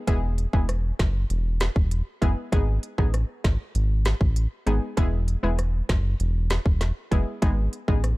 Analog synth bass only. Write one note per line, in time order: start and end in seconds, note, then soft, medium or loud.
0.08 0.47 E1 loud
0.53 0.93 E1 medium
0.99 1.25 F#1 medium
1.30 1.69 E1 loud
1.76 2.02 E1 medium
2.22 2.35 F#1 loud
2.53 2.79 G#1 loud
2.98 3.24 A1 medium
3.44 3.57 G#1 medium
3.75 4.14 G#1 loud
4.21 4.47 A1 medium
4.67 4.80 G#1 loud
4.97 5.36 E1 loud
5.43 5.82 E1 medium
5.89 6.15 F#1 medium
6.20 6.59 E1 loud
6.66 6.92 E1 medium
7.12 7.25 F#1 medium
7.42 7.68 G#1 loud
7.88 8.14 A1 medium